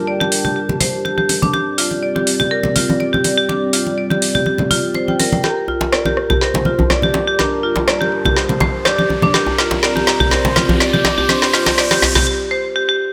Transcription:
Already playing: G3 D4 A#4 A5
0.07 G4 D5
0.20 G4, muted conga
0.32 open hi-hat
0.45 G4, muted conga, low conga
0.56 G4
0.69 muted conga, low conga
0.80 C5, open hi-hat, high conga, low conga
1.05 G4, muted conga
1.18 G4, high conga
1.29 open hi-hat, muted conga
1.42 D4, high conga, low conga
1.54 G3 C4 G4 D5, muted conga
1.78 F4, open hi-hat
1.91 muted conga
2.03 D5
2.16 G4, muted conga
2.27 open hi-hat
2.40 G4, muted conga, low conga
2.51 A#4
2.63 muted conga, low conga
2.76 F4, open hi-hat, high conga, low conga
2.90 high conga
3.00 D5, muted conga
3.13 G4, high conga, low conga
3.24 open hi-hat, muted conga
3.38 G4
3.49 D4, muted conga
3.73 F4, open hi-hat
3.87 muted conga
3.98 D5
4.11 G4, muted conga, high conga
4.22 open hi-hat
4.35 G4, muted conga, low conga
4.46 G4, high conga
4.58 muted conga, low conga
4.71 F4, open hi-hat, high conga, low conga
4.94 C5, muted conga
5.08 G5, high conga
5.20 A#4, open hi-hat, muted conga
5.32 G5, high conga, low conga
5.44 G3 D4 G4 A#4 A5, snare, riser, muted conga
5.68 F4, djembe tone
5.81 muted conga, djembe slap
5.93 D5, cross-stick, snare
6.05 G4, muted conga, djembe tone
6.17 cross-stick, mid tom
6.30 G4, muted conga, low conga, djembe bass
6.41 A#4 C5, snare
6.54 muted conga, djembe slap, djembe tone, low conga
6.65 F4, high conga, low conga
6.79 high conga, djembe bass
6.90 D5, cross-stick, snare, muted conga, djembe tone
7.02 G4, high conga, low conga
7.14 djembe slap, muted conga
7.27 G4
7.39 D4 A#4, snare, muted conga, djembe tone
7.63 F4
7.76 djembe slap, muted conga, djembe tone
7.88 D5, cross-stick, snare, mid tom
8.01 G4, muted conga
8.12 mid tom
8.25 G4, muted conga, djembe tone, low conga, djembe bass
8.37 G4 C5, snare
8.49 muted conga, low conga
8.60 C5, djembe slap, djembe tone, high conga, low conga
8.85 G4 D5, cross-stick, snare, muted conga
8.98 G4, high conga
9.10 muted conga, djembe tone
9.22 D4, high conga, low conga
9.34 C4 G4 A#4 D5, snare, muted conga
9.47 djembe tone
9.58 F4, snare
9.71 djembe slap, muted conga
9.83 D5, snare
9.96 G4, muted conga, djembe tone
10.07 snare, mid tom
10.20 G4, muted conga, djembe bass, low conga
10.31 A#4 C5, snare, djembe tone
10.45 djembe slap, muted conga, low conga
10.56 F4, snare, high conga, low conga
10.69 high conga, djembe bass
10.80 D5, snare, muted conga, djembe tone
10.94 G4, high conga, low conga
11.05 snare, djembe slap, muted conga
11.18 G4, djembe tone
11.29 D4 C5, snare, muted conga
11.42 snare
11.54 F4, snare
11.66 snare, muted conga, djembe slap, djembe tone
11.78 D5, snare, mid tom
11.91 G4, snare, muted conga
12.02 snare, mid tom, djembe tone
12.15 G4, snare, muted conga, djembe bass, low conga
12.27 G4
12.51 C5
12.76 G4
12.89 G4

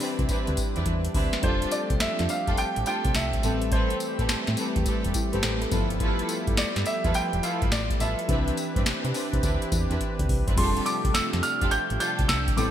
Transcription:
Already playing: E3 G3 C4 D4 G4 B4
0.00 C4 D4 E4 B4, open hi-hat, tambourine
0.19 C2, kick, closed hi-hat
0.29 C4 D4 E4 B4, kick, closed hi-hat, tambourine
0.47 D2, closed hi-hat
0.57 kick, closed hi-hat, tambourine
0.76 E2 C4 D4 E4 B4, closed hi-hat
0.86 E2, kick, closed hi-hat
1.05 closed hi-hat
1.14 D2 C4 D4 E4 B4, kick, open hi-hat
1.33 snare, closed hi-hat
1.42 F1 F3 G3 A3 C4 D4 F4 G4 A4 C5, kick, closed hi-hat
1.62 closed hi-hat
1.71 D5, closed hi-hat, tambourine
1.90 C2, kick, closed hi-hat
2.00 F2 E5, snare, closed hi-hat, tambourine
2.19 F2, snare, closed hi-hat
2.29 F5, closed hi-hat, tambourine
2.47 F1 D4 F4 G4 A4, kick, closed hi-hat
2.57 G5, closed hi-hat, tambourine
2.76 A1, closed hi-hat
2.86 D4 F4 G4 A4 G5, closed hi-hat, tambourine
3.05 C2, kick, closed hi-hat
3.14 C2 E5, snare, closed hi-hat, tambourine
3.33 kick, closed hi-hat
3.42 A1 E3 G3 A3 C4 G4 A4 B4, closed hi-hat, tambourine
3.62 closed hi-hat
3.72 C4 G4 A4 B4 C5, kick, closed hi-hat
3.90 closed hi-hat
4.00 closed hi-hat, tambourine
4.19 A1 C4 G4 A4 B4, kick, closed hi-hat
4.29 snare, closed hi-hat, tambourine
4.47 A2, snare, closed hi-hat
4.57 C4 G4 A4 B4, closed hi-hat, tambourine
4.76 E2, kick, closed hi-hat
4.86 E1 C4 G4 A4 B4, kick, closed hi-hat, tambourine
5.04 E1, closed hi-hat
5.14 E4 G4, kick, closed hi-hat, tambourine
5.33 G1 C4 G4 A4 B4, closed hi-hat
5.43 A1 A4 C5, snare, closed hi-hat, tambourine
5.62 A4, closed hi-hat
5.71 G1 F3 B3 E4 F4 G4 A4 B4, kick, closed hi-hat, tambourine
5.90 closed hi-hat
6.00 E4 F4 A4 B4, kick, closed hi-hat
6.19 closed hi-hat
6.29 closed hi-hat, tambourine
6.47 G1, kick, closed hi-hat
6.57 D5, snare, closed hi-hat, tambourine
6.76 G2, snare, closed hi-hat
6.86 E5, closed hi-hat, tambourine
7.04 E2 E4 F4 A4 B4, kick, closed hi-hat
7.14 E1 G5, closed hi-hat, tambourine
7.33 E1, closed hi-hat
7.43 E4 F4 A4 B4 F5, closed hi-hat, tambourine
7.62 G1, kick, closed hi-hat
7.72 A1 D5, snare, closed hi-hat, tambourine
7.90 kick, closed hi-hat
8.00 A1 E4 F4 A4 B4 E5, closed hi-hat, tambourine
8.19 closed hi-hat
8.28 C2 E3 C4 D4 E4 G4 B4, kick, closed hi-hat
8.48 closed hi-hat
8.57 closed hi-hat, tambourine
8.76 G2 C4 D4 E4 B4, kick, closed hi-hat
8.86 snare, closed hi-hat, tambourine
9.05 C3, closed hi-hat
9.14 C4 D4 E4 B4, open hi-hat, tambourine
9.33 C2, kick, closed hi-hat
9.43 D2 C4 D4 E4 B4, kick, closed hi-hat, tambourine
9.62 closed hi-hat
9.72 E2, kick, closed hi-hat, tambourine
9.90 E2 C4 D4 E4 B4, closed hi-hat
10.00 kick, closed hi-hat
10.19 D2, kick, closed hi-hat
10.29 C2, kick, open hi-hat
10.47 G1 C4 D4 E4 B4, kick, closed hi-hat
10.56 F1 C3 F3 G3 A3 C4 D4 F4 G4 G#4 A4 C6, kick, closed hi-hat, crash
10.65 A4
10.77 closed hi-hat
10.86 D6, closed hi-hat, tambourine
11.05 C2, kick, closed hi-hat
11.14 E6, snare, closed hi-hat, tambourine
11.33 F2, snare, closed hi-hat
11.43 F6, closed hi-hat, tambourine
11.61 F1 D4 F4 G4 A4, kick, closed hi-hat
11.71 G6, closed hi-hat, tambourine
11.90 A1, closed hi-hat
12.00 D4 F4 G4 A4 G6, closed hi-hat, tambourine
12.19 C2, kick, closed hi-hat
12.28 C2 E6, snare, closed hi-hat, tambourine
12.48 kick, closed hi-hat
12.56 A1 E3 G3 A3 B3 C4 E4 G4 A4 B4 D6, closed hi-hat, tambourine

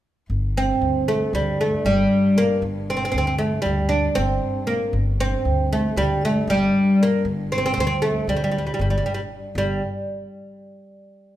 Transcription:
0.30 G1 G2
0.57 C4
0.81 D2
1.08 A3
1.33 D2 G3
1.61 A3
1.85 G1 G3
2.38 A#3
2.62 G1
2.90 C4
2.97 C4
3.05 C4
3.12 D2 C4
3.18 C4
3.27 C4
3.38 A3
3.62 D2 G3
3.89 D4
4.15 G1 C4
4.67 A#3
4.93 G1 G2
5.20 C4
5.45 D2
5.73 A3
5.96 D2 G3
6.25 A3
6.47 G1 G3
7.03 A#3
7.25 G1
7.52 C4
7.58 C4
7.66 C4
7.74 D2 C4
7.80 C4
7.87 C4
8.02 A3
8.27 D2 G3
8.37 G3
8.44 G3
8.52 G3
8.58 G3
8.67 G3
8.74 G3
8.79 G1 G3
8.90 G3
8.98 G3
9.06 G3
9.14 G3
9.55 G1 G3

